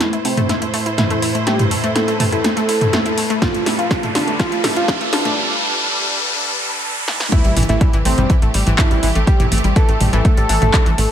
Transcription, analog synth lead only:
0.00 0.10 E4 medium
0.25 0.47 C4 medium
0.98 1.27 E4 medium
1.47 1.62 G4 medium
1.96 2.18 A4 medium
2.32 3.32 A4 loud
3.42 3.64 F4 medium
3.79 4.00 F4 medium
4.15 4.37 D4 medium
4.39 4.61 F4 loud
4.76 4.98 F4 medium
5.13 5.35 D4 medium
7.32 7.54 E4 loud
7.69 7.91 E4 medium
8.05 8.27 C4 loud
8.78 9.08 E4 loud
9.27 9.42 G4 medium
9.76 9.98 A4 medium
10.13 11.12 A4 loud

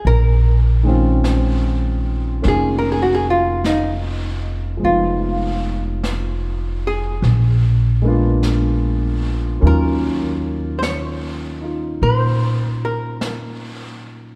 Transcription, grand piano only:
0.83 4.82 D#3 soft
0.83 4.78 G#3 soft
0.83 4.83 C4 soft
0.88 2.42 C#4 soft
0.88 2.43 F4 soft
2.42 4.82 A#3 soft
2.42 4.83 C#4 soft
2.42 4.83 D#4 soft
2.42 4.84 F4 soft
4.77 7.19 F3 soft
4.77 7.21 G#3 soft
4.83 7.22 B3 soft
4.83 7.24 D#4 soft
4.88 7.25 F4 soft
8.02 9.60 G#3 soft
8.02 9.60 A#3 soft
8.02 9.61 B3 soft
8.02 9.62 D4 soft
8.07 9.63 F4 medium
9.60 14.35 F#3 soft
9.60 14.35 A#3 soft
9.60 14.35 C#4 soft
9.60 11.59 D#4 soft
9.65 11.62 F4 medium
11.61 14.35 D#4 soft
11.61 14.35 F4 soft

